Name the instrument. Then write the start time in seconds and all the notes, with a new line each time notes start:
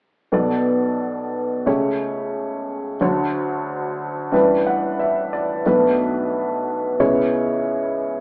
upright piano
0.32 B1 B2 B3 A4 D5
1.66 C#2 C#3 A3 G4 C#5
3.01 D2 D3 F#3 D4 C#5
4.32 A1 A2 G3 D4 B4
4.67 F#5
4.99 E5
5.33 D5
5.66 B1 B2 A3 D4 B4
6.99 C#2 C#3 B3 E4 C#5